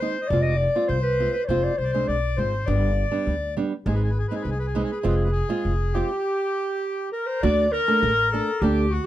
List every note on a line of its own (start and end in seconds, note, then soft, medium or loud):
0.00 0.16 G#3 medium
0.00 0.16 C4 medium
0.00 0.16 D#4 medium
0.00 0.21 C5 medium
0.00 0.29 C5 medium
0.22 0.29 D#5 soft
0.27 0.66 F1 loud
0.27 0.43 D5 loud
0.27 0.85 D5 medium
0.32 0.53 G#3 medium
0.32 0.53 C4 medium
0.32 0.53 F4 medium
0.42 0.59 D#5 medium
0.57 0.90 D5 loud
0.76 0.97 G#3 medium
0.76 0.97 C4 medium
0.76 0.97 F4 medium
0.88 1.25 C2 medium
0.88 1.44 C5 medium
0.88 1.02 C5 medium
1.02 1.31 B4 medium
1.20 1.34 G#3 medium
1.20 1.34 C4 medium
1.20 1.34 F4 medium
1.33 1.43 B4 medium
1.44 1.65 C5 medium
1.44 1.76 C5 medium
1.44 1.49 D5 medium
1.49 1.66 F1 medium
1.49 1.71 G#3 medium
1.49 1.72 C4 medium
1.49 1.72 F4 medium
1.64 1.80 D5 medium
1.78 2.05 C2 medium
1.78 1.84 C5 medium
1.78 2.09 C5 medium
1.84 1.91 D5 medium
1.92 2.16 G#3 medium
1.92 2.16 C4 medium
1.92 2.16 D4 medium
1.92 2.07 C5 medium
2.08 2.35 B1 medium
2.08 2.36 D5 medium
2.08 2.39 D5 medium
2.37 2.65 G#1 medium
2.37 2.53 G#3 medium
2.37 2.53 C4 soft
2.37 2.53 F4 medium
2.37 2.68 C5 medium
2.66 3.03 G1 loud
2.66 2.90 G3 medium
2.66 2.90 B3 medium
2.66 2.90 D4 medium
2.66 3.55 D5 medium
2.66 3.59 D5 medium
3.11 3.34 G3 medium
3.11 3.34 B3 medium
3.11 3.34 D4 medium
3.27 3.62 D2 medium
3.57 3.72 G3 medium
3.57 3.72 B3 medium
3.57 3.72 D4 medium
3.86 4.22 G#1 loud
3.86 4.09 G#3 medium
3.86 4.09 C4 medium
3.86 4.09 D#4 medium
3.86 5.96 G#4 medium
3.86 3.94 G#4 medium
3.94 4.02 B4 medium
4.03 4.11 G#4 soft
4.10 4.18 B4 soft
4.19 4.26 G#4 medium
4.28 4.53 G#3 medium
4.28 4.53 C4 medium
4.28 4.53 D#4 medium
4.28 4.35 B4 medium
4.35 4.43 G#4 medium
4.42 4.81 C2 medium
4.42 4.50 B4 medium
4.51 4.58 G#4 medium
4.59 4.67 B4 medium
4.67 4.74 G#4 medium
4.75 4.90 G#3 medium
4.75 4.91 C4 medium
4.75 4.90 D#4 medium
4.75 4.82 B4 soft
4.84 4.91 G#4 medium
4.92 4.99 B4 medium
5.00 5.27 G#3 medium
5.00 5.07 G#4 soft
5.04 5.41 F1 loud
5.04 5.27 C4 medium
5.04 5.27 F4 medium
5.04 5.15 B4 medium
5.16 5.23 G#4 medium
5.24 5.31 B4 soft
5.32 5.97 G#4 medium
5.49 5.72 G#3 medium
5.49 5.72 C4 medium
5.49 5.72 F4 medium
5.65 6.01 F1 medium
5.94 6.10 G#3 medium
5.94 6.10 C4 medium
5.94 6.10 F4 medium
5.94 7.09 G4 medium
5.94 7.12 G4 medium
7.12 7.28 A#4 medium
7.12 7.44 A#4 medium
7.27 7.42 C5 loud
7.43 7.79 D2 loud
7.43 7.65 A3 medium
7.43 7.66 D4 medium
7.43 7.66 F#4 medium
7.43 7.74 D5 loud
7.43 7.71 D5 medium
7.72 8.31 A#4 loud
7.72 8.65 A#4 loud
7.88 8.10 A3 medium
7.88 8.10 D4 medium
7.88 8.10 A4 medium
8.03 8.38 A1 loud
8.32 8.48 A3 medium
8.32 8.48 D4 medium
8.32 8.63 A4 loud
8.32 8.48 A4 medium
8.62 8.97 D2 loud
8.62 8.85 A3 medium
8.62 8.85 D4 medium
8.62 8.92 G4 medium
8.62 8.93 G4 medium
8.62 8.85 A4 medium
8.91 9.06 F#4 medium